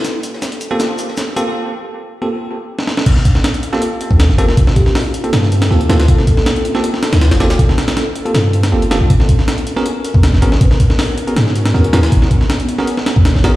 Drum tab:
CC |----------------|----------------|x---------------|----------------|
HH |x-x-xxx-x-x-x-x-|----------------|x-x-xxx-x-x-x-x-|x-x-o-xxx-xx-xxx|
SH |x-x-x-x-x-x-x-x-|----------------|----------------|----------------|
SD |o--oo---o--oo---|-------------ooo|-o-oo--o----oo-o|-o-oo---oo-oo-oo|
BD |----------------|----------------|o-o--------o----|o-o-------------|

CC |----------------|----------------|----------------|----------------|
HH |x-x-xxx-x-xxxxxx|x-xxx-xxx-xx-xx-|x-x-xxx-x-x-x-x-|x-x-o-xxx-xx-xxx|
SH |----------------|----------------|----------------|----------------|
SD |-o-oo--o-ooooooo|-oooo---o--o--o-|-o-oo--o----oo-o|-o-oo---oo-oo-oo|
BD |o-o-------------|o---------------|o-o--------o----|o-o-------------|

CC |----------------|
HH |x-x-xxx-x-x-x-x-|
SH |----------------|
SD |-o-oo--o-oo-ooo-|
BD |o-o--------o----|